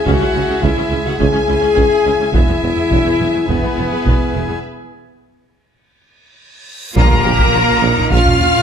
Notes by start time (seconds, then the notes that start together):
Already playing: G#3 E4 G#4 E5 G#5
0.06 C#2 C#4 F#4 F#5, taiko
0.20 C#2 C#4 G#4
0.34 C#2 C#4 E4
0.49 C#2 C#4 G#4
0.63 C#2 C#4 E4 E5, taiko
0.77 C#2 C#4 G#4
0.91 C#2 C#4 E4
1.06 C#2 C#4 F#4 G#4 F#5
1.18 C#2 C#4 G#4 G#5, taiko
1.34 C#2 C#4 G#4
1.48 C#2 C#4 E4
1.62 C#2 C#4 G#4
1.76 C#2 C#4, taiko
2.04 C#2 C#4 E4
2.19 C#2 C#4 G#4
2.33 E1 E2 B3 E4 G#4 E5 G#5, taiko
2.48 E2 B3 G#4
2.62 E1 E2 B3 E4
2.77 E2 B3 G#4
2.91 E1 E2 B3, taiko
3.05 E2 B3 G#4
3.19 E1 E2 B3 E4
3.34 E2 B3 G#4
3.48 E1 E2 B3 B4, taiko
3.63 E2 B3 G#4
3.77 E1 E2 B3 E4
3.91 E2 B3 G#4
4.06 E1 E2 B3, taiko
4.34 E1 E2 B3 E4
4.48 E2 B3 G#4
4.64 reverse cymbal
6.96 A#1 A#2 F3 A#3 C#4 F4 A#4 F5 A#5, taiko, impact
7.11 A#1, taiko low
7.25 A#1 G4
7.39 A#1, taiko
7.53 A#1 F4
7.68 A#1
7.82 A#1 D#4
7.97 A#1, taiko low
8.11 A#1 C#4 F4 F5 F6, taiko
8.25 A#1, taiko low
8.39 A#1, taiko low
8.55 A#1